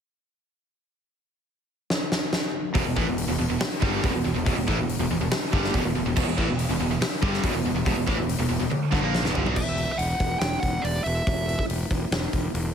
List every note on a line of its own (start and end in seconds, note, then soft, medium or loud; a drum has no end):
1.90 snare medium
2.12 snare medium
2.33 snare medium
2.74 2.85 E1 loud
2.74 2.84 E2 medium
2.74 2.85 B2 medium
2.74 kick loud
2.74 open hi-hat medium
2.85 2.96 E1 medium
2.85 2.96 E2 medium
2.85 2.95 B2 medium
2.96 3.06 A1 medium
2.96 3.06 A2 medium
2.96 3.06 E3 medium
2.96 kick loud
3.06 3.27 E1 medium
3.06 3.24 E2 medium
3.06 3.24 B2 medium
3.18 open hi-hat medium
3.28 3.38 E1 medium
3.28 3.38 E2 medium
3.28 3.39 B2 medium
3.39 3.49 E1 medium
3.39 3.49 E2 medium
3.39 3.49 B2 medium
3.49 3.59 E1 medium
3.49 3.60 E2 medium
3.49 3.61 B2 medium
3.60 muted distorted electric guitar stroke medium
3.60 muted overdriven electric guitar stroke medium
3.60 muted fingered electric bass stroke soft
3.60 snare loud
3.60 open hi-hat medium
3.82 4.02 G1 medium
3.82 4.03 G2 medium
3.82 4.03 D3 medium
3.82 4.03 G3 loud
3.82 kick loud
4.03 4.13 E1 loud
4.03 4.13 E2 loud
4.03 4.13 B2 loud
4.03 kick loud
4.03 open hi-hat medium
4.14 4.24 E1 medium
4.14 4.23 E2 medium
4.14 4.23 B2 medium
4.24 4.35 E1 medium
4.24 4.34 E2 medium
4.24 4.35 B2 medium
4.35 4.45 E1 medium
4.35 4.44 E2 medium
4.35 4.44 B2 medium
4.45 4.55 E1 medium
4.45 4.55 E2 medium
4.45 4.56 B2 loud
4.45 kick loud
4.45 open hi-hat medium
4.56 4.66 E1 medium
4.56 4.67 E2 medium
4.56 4.67 B2 medium
4.67 4.77 A1 medium
4.67 4.77 A2 medium
4.67 4.77 E3 medium
4.67 kick medium
4.78 4.98 E1 medium
4.78 4.95 E2 medium
4.78 4.95 B2 medium
4.89 open hi-hat medium
4.99 5.09 E1 medium
4.99 5.09 E2 medium
4.99 5.10 B2 medium
5.10 5.19 E1 medium
5.10 5.20 E2 medium
5.10 5.20 B2 medium
5.20 5.30 E1 medium
5.20 5.31 E2 medium
5.20 5.31 B2 medium
5.31 muted fingered electric bass stroke soft
5.31 muted overdriven electric guitar stroke medium
5.31 muted distorted electric guitar stroke medium
5.31 snare loud
5.31 open hi-hat medium
5.53 5.72 G1 medium
5.53 5.73 G2 medium
5.53 5.74 D3 loud
5.53 5.74 G3 medium
5.53 kick loud
5.64 snare soft
5.74 5.83 E1 loud
5.74 5.83 E2 medium
5.74 5.83 B2 loud
5.74 kick loud
5.74 open hi-hat medium
5.84 5.94 E1 medium
5.84 5.94 E2 medium
5.84 5.95 B2 medium
5.96 6.05 E1 medium
5.96 6.05 E2 medium
5.96 6.05 B2 medium
6.06 6.16 E1 medium
6.06 6.15 E2 medium
6.06 6.15 B2 medium
6.16 6.26 E1 medium
6.16 6.25 E2 loud
6.16 6.26 B2 medium
6.16 kick loud
6.16 crash loud
6.26 6.37 E1 medium
6.26 6.37 E2 medium
6.26 6.37 B2 medium
6.37 6.47 A1 medium
6.37 6.47 A2 medium
6.37 6.47 E3 medium
6.37 kick loud
6.48 6.68 E1 medium
6.48 6.65 E2 medium
6.48 6.66 B2 medium
6.59 open hi-hat medium
6.69 6.79 E1 medium
6.69 6.79 E2 medium
6.69 6.79 B2 medium
6.80 6.89 E1 medium
6.80 6.89 E2 medium
6.80 6.89 B2 medium
6.89 7.00 E1 medium
6.89 6.99 E2 medium
6.89 7.01 B2 medium
7.01 muted fingered electric bass stroke soft
7.01 muted overdriven electric guitar stroke medium
7.01 muted distorted electric guitar stroke medium
7.01 snare loud
7.01 open hi-hat medium
7.22 7.42 G1 loud
7.22 7.43 G2 loud
7.22 7.43 D3 medium
7.22 7.43 G3 loud
7.22 kick loud
7.34 snare soft
7.43 7.53 E1 loud
7.43 7.54 E2 loud
7.43 7.54 B2 loud
7.43 kick loud
7.43 open hi-hat medium
7.54 7.64 E1 medium
7.54 7.63 E2 medium
7.54 7.64 B2 medium
7.64 7.74 E1 medium
7.64 7.74 E2 medium
7.64 7.74 B2 medium
7.74 7.85 E1 medium
7.74 7.84 E2 medium
7.74 7.84 B2 medium
7.85 7.96 E1 loud
7.85 7.95 E2 medium
7.85 7.95 B2 loud
7.85 kick loud
7.85 open hi-hat medium
7.96 8.06 E1 medium
7.96 8.07 E2 medium
7.96 8.06 B2 medium
8.07 8.17 A1 loud
8.07 8.17 A2 medium
8.07 8.18 E3 medium
8.07 kick loud
8.17 8.37 E1 medium
8.17 8.35 E2 medium
8.17 8.35 B2 medium
8.29 open hi-hat medium
8.39 8.49 E1 medium
8.39 8.48 E2 medium
8.39 8.49 B2 medium
8.49 8.59 E1 medium
8.49 8.59 E2 medium
8.49 8.59 B2 medium
8.60 8.70 E1 medium
8.60 8.70 E2 medium
8.60 8.71 B2 medium
8.70 muted distorted electric guitar stroke medium
8.70 muted overdriven electric guitar stroke medium
8.70 muted fingered electric bass stroke soft
8.70 high tom medium
8.91 9.01 G1 medium
8.91 9.02 G2 medium
8.91 9.02 D3 loud
8.91 kick medium
9.01 9.22 A#1 loud
9.01 9.23 A#2 medium
9.01 9.23 F3 medium
9.01 9.24 A#3 loud
9.15 snare medium
9.23 9.33 E1 medium
9.23 9.33 E2 medium
9.23 9.34 B2 medium
9.23 snare medium
9.34 9.43 G1 loud
9.34 9.44 G2 medium
9.34 9.44 D3 loud
9.34 floor tom loud
9.44 9.58 B1 medium
9.44 9.55 B2 medium
9.44 9.55 F#3 medium
9.44 floor tom loud
9.56 9.85 E1 medium
9.56 9.91 E5 medium
9.56 kick loud
9.56 crash loud
9.78 open hi-hat medium
9.92 9.99 E5 medium
9.98 10.13 E1 medium
9.98 10.38 F#5 medium
9.98 open hi-hat medium
10.20 10.34 E1 medium
10.20 kick medium
10.20 open hi-hat medium
10.39 10.55 E1 medium
10.39 10.60 G5 medium
10.39 snare loud
10.39 open hi-hat medium
10.60 10.77 E1 medium
10.60 10.83 F#5 loud
10.60 kick medium
10.60 open hi-hat soft
10.82 10.98 E1 medium
10.82 11.04 D5 medium
10.82 open hi-hat medium
11.04 11.19 E1 medium
11.04 11.64 E5 medium
11.04 open hi-hat medium
11.27 11.55 E1 loud
11.27 kick loud
11.27 open hi-hat medium
11.49 open hi-hat medium
11.59 kick medium
11.69 11.83 E1 medium
11.69 open hi-hat medium
11.90 12.04 E1 medium
11.90 kick medium
11.90 open hi-hat medium
12.11 12.25 E1 medium
12.11 snare loud
12.11 open hi-hat medium
12.33 12.47 E1 medium
12.33 kick medium
12.33 open hi-hat medium
12.54 12.68 E1 loud
12.54 open hi-hat medium